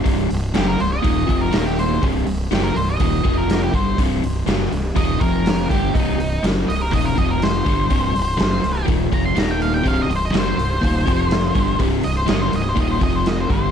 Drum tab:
HH |oooooooo|oooooooo|oooooooo|oooooooo|
SD |--o---o-|--o---o-|--o---o-|--o---o-|
BD |o---oo--|o---oo-o|o---oo-o|o---oo-o|

HH |oooooooo|oooooooo|oooooooo|
SD |--o---o-|--o---o-|--o---o-|
BD |o---oo--|o---oo-o|o---oo-o|